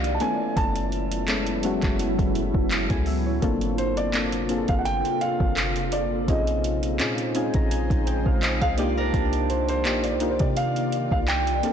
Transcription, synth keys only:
0.00 0.23 F3 medium
0.00 0.23 A#3 medium
0.00 0.22 D4 medium
0.00 0.23 D#4 medium
0.00 0.23 F#4 medium
0.00 0.23 G4 medium
0.20 1.07 A3 medium
0.20 1.08 B3 medium
0.20 1.08 C#4 medium
0.20 1.08 E4 medium
0.20 1.09 A4 medium
1.28 1.57 G#3 medium
1.28 1.57 B3 medium
1.28 1.57 C#4 medium
1.28 1.57 E4 medium
1.28 1.58 A4 medium
1.63 2.77 G#3 medium
1.63 2.77 B3 medium
1.63 2.77 C#4 medium
1.63 2.77 E4 medium
1.63 2.78 F#4 loud
2.91 3.06 G#5 medium
3.07 3.25 E5 medium
3.27 3.60 C#5 medium
3.42 4.00 A#3 medium
3.42 4.00 C4 medium
3.42 4.00 D4 medium
3.42 4.01 F4 medium
3.42 4.01 A4 loud
4.13 4.42 A#3 medium
4.13 4.43 C4 medium
4.13 4.43 D4 medium
4.13 4.43 F4 medium
4.13 4.43 A4 medium
4.49 5.62 A#3 medium
4.49 5.63 C4 medium
4.49 5.63 D4 medium
4.49 5.63 F4 medium
4.49 4.57 G#4 medium
4.58 5.67 A4 medium
6.28 6.85 C4 medium
6.28 6.86 C#4 medium
6.28 6.86 D#4 medium
6.28 6.86 F4 medium
6.28 6.86 G#4 medium
6.99 7.28 C4 medium
6.99 7.28 C#4 medium
6.99 7.29 D#4 medium
6.99 7.29 F4 medium
6.99 7.29 G#4 medium
7.35 8.48 C4 medium
7.35 8.48 C#4 medium
7.35 8.49 D#4 medium
7.35 8.49 F4 medium
7.35 8.49 G#4 loud
7.35 7.53 G#5 medium
7.55 7.70 A#5 medium
7.72 8.04 G#5 medium
8.07 8.25 G5 medium
8.27 8.42 F5 medium
8.43 8.76 D#5 medium
8.78 9.65 A#3 loud
8.78 9.65 D4 medium
8.78 9.65 D#4 medium
8.78 9.65 F4 medium
8.78 9.66 G4 loud
8.78 9.12 D5 medium
9.85 10.14 A#3 medium
9.85 10.14 D4 medium
9.85 10.14 D#4 medium
9.85 10.15 F4 medium
9.85 10.15 G4 medium
10.20 11.34 A#3 medium
10.20 11.34 D4 medium
10.20 11.34 D#4 medium
10.20 11.35 F4 medium
10.20 11.35 G4 medium
11.63 11.73 A#3 medium
11.63 11.73 C4 medium
11.63 11.73 D4 medium
11.63 11.73 F4 medium
11.63 11.73 A4 medium

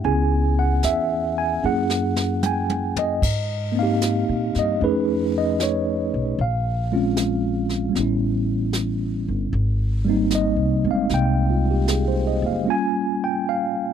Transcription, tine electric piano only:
0.00 0.10 G5 medium
0.04 1.63 B3 soft
0.04 1.62 C#4 soft
0.04 1.63 E4 soft
0.04 1.64 G#4 soft
0.04 0.60 G#5 medium
0.59 0.82 F#5 medium
0.85 1.40 E5 medium
1.38 1.64 G#5 medium
1.64 3.22 A#3 soft
1.64 3.22 C#4 soft
1.64 3.23 E4 soft
1.64 3.23 G#4 soft
1.64 2.36 F#5 medium
2.43 2.45 G5 medium
2.43 3.00 G#5 medium
2.99 3.79 D#5 medium
3.72 4.79 A#3 medium
3.72 4.80 C4 soft
3.79 4.81 D#4 soft
3.79 4.84 G4 medium
3.79 4.60 F5 medium
4.59 4.83 D#5 medium
4.79 6.38 A3 soft
4.79 6.39 C#4 soft
4.79 6.40 D#4 soft
4.84 6.40 G#4 medium
4.84 5.33 B4 medium
5.38 5.62 D#5 medium
5.63 6.42 C#5 medium
6.41 7.93 F5 medium
6.92 7.95 G#3 soft
6.92 7.95 C4 soft
6.92 7.96 C#4 soft
6.92 7.96 F4 medium
7.89 9.49 G3 soft
7.89 9.51 B3 soft
7.97 9.53 C#4 soft
7.97 9.55 E4 medium
10.05 12.63 G3 medium
10.05 12.65 A#3 soft
10.05 10.86 C4 medium
10.10 12.68 D#4 medium
10.35 10.83 D#5 medium
10.85 12.66 G#3 soft
10.85 12.68 C4 soft
10.91 11.13 F5 medium
11.14 12.64 G5 medium
11.50 11.73 F4 soft
11.71 11.97 G4 soft
11.88 12.25 G#4 soft
12.08 12.42 C5 soft
12.27 12.51 D#5 soft
12.46 12.74 F5 soft
12.64 13.93 G3 soft
12.64 13.93 A#3 soft
12.64 13.93 C#4 soft
12.69 13.93 F4 soft
12.69 13.23 G#5 medium
13.24 13.47 G5 medium
13.49 13.93 F5 medium

